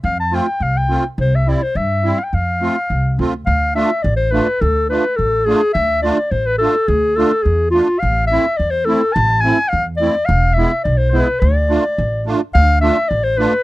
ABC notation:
X:1
M:2/4
L:1/16
Q:1/4=106
K:none
V:1 name="Clarinet"
f a g2 f g2 z | c e d c e3 f/2 g/2 | f6 z2 | f2 e2 d c B2 |
A2 B2 A2 ^G2 | e2 d2 c B A2 | ^G2 A2 G2 F2 | f2 e2 d c A2 |
a2 ^g2 f z d2 | f2 e2 d c B2 | d6 z2 | f2 e2 d c B2 |]
V:2 name="Accordion"
z2 [A,CF] z3 [A,CF] z | z2 [G,CE] z3 [G,CE] z | z2 [A,CF] z3 [A,CF] z | z2 [A,DF] z3 [A,DF] z |
z2 [A,DF] z3 [A,DF] z | z2 [A,DF] z3 [A,DF] z | z2 [A,DF] z3 [A,DF] z | z2 [A,CE] z3 [A,CE] z |
z2 [A,CE] z3 [A,CE] z | z2 [^G,B,E] z3 [G,B,E] z | z2 [A,DF] z3 [A,DF] z | z2 [A,DF] z3 [A,DF] z |]
V:3 name="Upright bass" clef=bass
F,,4 C,,4 | C,,4 G,,4 | F,,4 C,,2 D,,2 | D,,4 A,,,4 |
D,,4 A,,,4 | D,,4 A,,,4 | D,,4 E,,4 | A,,,4 E,,4 |
A,,,4 E,,4 | E,,,4 B,,,4 | D,,4 A,,,4 | D,,4 A,,,4 |]